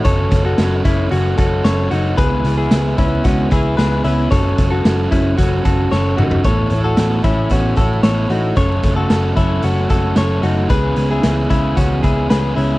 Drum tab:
HH |x-x-x-x-x-x-x-x-|x-x-x-x-x-x-x-x-|x-x-x-x-x-x-----|x-x-x-x-x-x-x-x-|
SD |--o-o-------o---|--o-o-------o---|----o-------o---|----o-------o---|
T2 |----------------|----------------|--------------o-|----------------|
FT |----------------|----------------|---------------o|----------------|
BD |o-o---o---o-----|o-----o-o-o-----|o-o---o-o-o-----|o-----o-o-o-----|

HH |x-x-x-x-x-x-x-x-|x-x-x-x-x-x-x-x-|
SD |----o-------o---|----o-------o---|
T2 |----------------|----------------|
FT |----------------|----------------|
BD |o-o---o---o-----|o-----o-o-o-----|